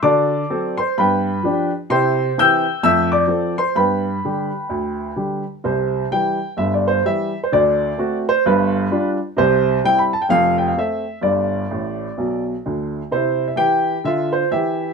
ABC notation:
X:1
M:4/4
L:1/16
Q:"Swing" 1/4=128
K:C
V:1 name="Grand piano"
[dad']6 [cc']2 [Bgb]6 z2 | [cgc']4 [ge'g']4 [ee']2 [dd']4 [cc']2 | [Bgb]12- [Bgb]2 z2 | c4 g4 e d c2 e3 c |
d6 c2 B6 z2 | c4 g b a g f2 g f e4 | d12 z4 | c3 e g4 e2 c2 e4 |]
V:2 name="Grand piano" clef=bass
[D,^F]4 [^F,CA]4 [G,,B,]4 [=F,DG]4 | [C,E]4 [E,CG]4 [F,,A,]4 [F,CA]4 | [G,,B,]4 [D,G,G]4 D,,4 [D,G,G]4 | [C,,C,]4 [E,G,G]4 [G,,,G,,]4 [E,G,G]4 |
[D,,D,]4 [A,C^F]4 [G,,,G,,]4 [G,D=F]4 | [C,,C,]4 [G,CE]4 [F,,,F,,]4 [A,CA]4 | [G,,,G,,]4 [A,,,A,,]4 [B,,,B,,]4 [D,,D,]4 | [C,E]4 [E,G]4 [D,F]4 [E,G]4 |]